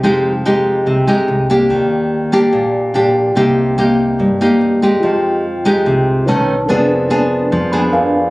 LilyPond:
<<
  \new Staff \with { instrumentName = "Tine electric piano" } { \time 4/4 \key c \minor \tempo 4 = 144 << { r1 | r1 | r1 | \key bes \dorian r1 |
r2 \tuplet 3/2 { r8. ces'''16 aes''8 } f''4 | } \\ { r1 | r1 | r1 | <f' ees'' g''>2. <dis' b' cis'' a''>4 |
<d' bes' ces'' aes''>2. <d' bes' ces'' aes''>4 | } >> }
  \new Staff \with { instrumentName = "Nylon-string guitar" } { \time 4/4 \key c \minor << { <aes ees' g'>8 r8 <aes ees' g'>4. <aes ees' g'>4 <bes d' g'>8~ | <bes d' g'>4. <bes d' g'>4. <bes d' g'>4 | <bes ees' g'>4 <bes ees' g'>4. <bes ees' g'>4 <aes ees' g'>8~ | \key bes \dorian <aes ees' g'>4 r8 <aes ees' g'>4. <dis a cis'>8 r8 |
<ces' d' aes'>4 <ces' d' aes'>4. <ces' d' aes'>4. | } \\ { f2 c2 | ees2 bes,2 | c2 g,2 | f2 c4 r4 |
f2 f2 | } >> }
  \new Staff \with { instrumentName = "Upright bass" } { \clef bass \time 4/4 \key c \minor f,,2 c,8 r8 c,4 | ees,2 bes,,8 r8 bes,,4 | c,2 g,8 r8 ees,4 | \key bes \dorian f,2 c,4 b,,4 |
f,,2 f,4 f,4 | }
>>